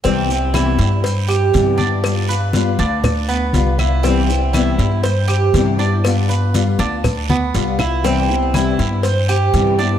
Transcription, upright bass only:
X:1
M:4/4
L:1/8
Q:1/4=120
K:C
V:1 name="Upright bass" clef=bass
C,,3 G,,3 G,,2- | G,,3 D,,3 C,,2- | C,,3 G,,3 G,,2- | G,,3 D,,3 C,,2- |
C,,3 G,,3 G,,2 |]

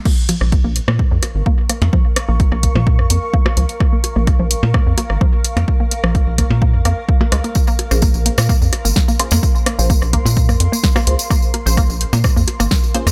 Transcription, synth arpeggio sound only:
X:1
M:4/4
L:1/16
Q:1/4=128
K:Bbm
V:1 name="Synth arpeggio sound"
B, z F, z2 B, z B, z F, z2 B, z B, z | F, z2 B, z B, z F, z2 B, z B, z F, z | z B, z B, z F, z2 B, z B, z F, z2 B, | z B, z F, z2 B, z B, z B, z2 B, A, B, |
z B, z2 B, z B, z B, z2 B, z B, z B, | z2 B, z B, z B, z2 B, z B, z B, z2 | B, z B, z B, z2 B, z B, z B, z2 B, z |]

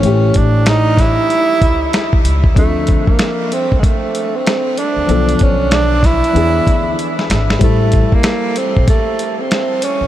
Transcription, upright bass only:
X:1
M:4/4
L:1/16
Q:"Swing 16ths" 1/4=95
K:Aphr
V:1 name="Upright bass" clef=bass
A,,,2 A,,,4- A,,, z3 ^C,,2 z2 C,,2 | D,,3 z4 C,, z6 z D,, | =B,,,2 B,,,4- B,,, z E,,2 D,,2 z2 ^G,,,2 | A,,,3 z4 B,,, z6 z B,,, |]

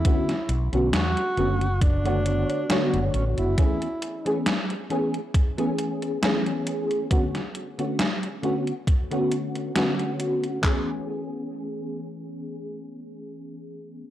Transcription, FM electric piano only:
X:1
M:4/4
L:1/16
Q:"Swing 16ths" 1/4=68
K:A
V:1 name="FM electric piano"
[D,A,B,CF] z2 [D,A,B,CF] z2 [D,A,B,CF] z2 [D,A,B,Fc]3 [D,A,B,Fc]4 | [E,A,B,CG] z2 [E,A,B,CG] z2 [E,A,B,CG] z2 [E,A,B,CG]3 [E,A,B,CG]4 | [D,A,B,CF] z2 [D,A,B,CF] z2 [D,A,B,CF] z2 [D,A,B,CF]3 [D,A,B,CF]4 | [E,A,B,CG]16 |]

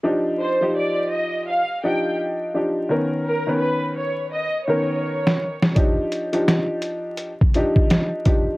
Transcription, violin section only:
X:1
M:4/4
L:1/8
Q:"Swing 16ths" 1/4=84
K:Eb
V:1 name="Violin section"
z c d e f g z2 | z ^A =B ^c ^d c3 | z8 |]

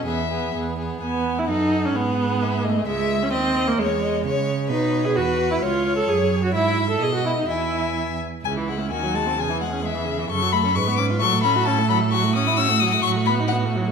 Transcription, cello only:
X:1
M:2/4
L:1/8
Q:1/4=130
K:E
V:1 name="Cello" clef=bass
E,,2 E,,2 | E,,2 F,,2 | G,,4 | C,,2 _E,,2 |
E,,2 C,2 | B,,2 E,,2 | C,,2 F,,2 | G,,2 B,,2 |
E,,3 z | [K:C#m] C,,2 D,,2 | E,,4 | F,,2 G,,2 |
A,,4- | [K:F#dor] A,,4 | A,,4 |]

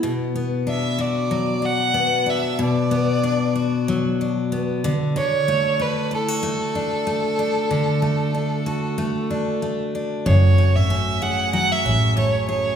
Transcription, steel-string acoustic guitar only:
X:1
M:4/4
L:1/16
Q:"Swing 16ths" 1/4=94
K:Dlyd
V:1 name="Steel-string acoustic guitar"
B,,2 B,2 D2 F2 F,2 D2 B,2 D2 | B,,2 B,2 D2 F2 F,2 D2 B,2 D,2 | D,2 A,2 D2 E F A,2 D2 A,2 D2 | D,2 A,2 D2 F2 A,2 D2 A,2 D2 |
F,,2 A,2 C2 G2 F,2 C2 A,2 G2 |]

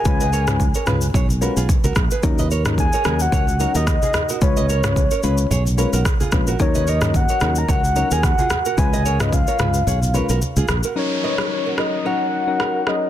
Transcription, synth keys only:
X:1
M:4/4
L:1/16
Q:"Swing 16ths" 1/4=110
K:Ebm
V:1 name="Synth keys"
[A,DFc] z2 [A,DFc] z2 [A,DFc] z3 [A,DFc] z4 z | [G,DEB] z2 [G,DEB] z2 [G,DEB] z3 [G,DEB] z4 z | [A,DFc] z2 [A,DFc] z2 [A,DFc] z3 [A,DFc] z3 [A,DFc] z | [G,DEB] z2 [G,DEB] z2 [G,DEB] z3 [G,DEB] z4 z |
[A,DFc] z2 [A,DFc] z2 [A,DFc] z3 [A,DFc] z4 z | [G,DEB]3 [G,DEB]3 [G,DEB]2 [G,DEB]3 [G,DEB]3 [G,DEB]2 |]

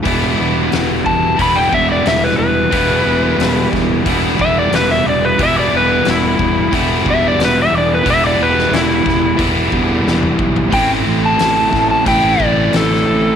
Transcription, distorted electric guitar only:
X:1
M:4/4
L:1/8
Q:1/4=90
K:Em
V:1 name="Distorted electric guitar"
[E,G,B,E]4 [E,G,B,E]4 | [E,G,B,E]4 [E,G,B,E]4 | [E,G,B,E]4 [E,G,B,E]4 | [E,G,B,E]4 [E,G,B,E]4 |
[A,,E,A,CE]4 [A,,E,A,CE]4 |]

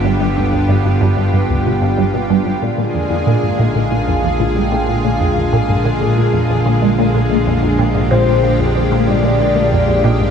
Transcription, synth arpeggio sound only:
X:1
M:4/4
L:1/16
Q:1/4=93
K:Bbmix
V:1 name="Synth arpeggio sound" clef=bass
G,, G,, D,, D,, G,, G,, G,, G,, G,, D,, =B,, G,, G,, B,, G,, G,, | B,, B,, F,, F,, B,, A,, B,, B,, B,, F,, F,, B,, A,, B,, B,, B,, | F,, F,, B,, A,, B,, B,, B,, F,, F,, B,, A,, B,, B,, B,, F,, F,, | B,, A,, B,, B,, B,, F,, F,, B,, A,, B,, B,, B,, F,, F,, B,, A,, |]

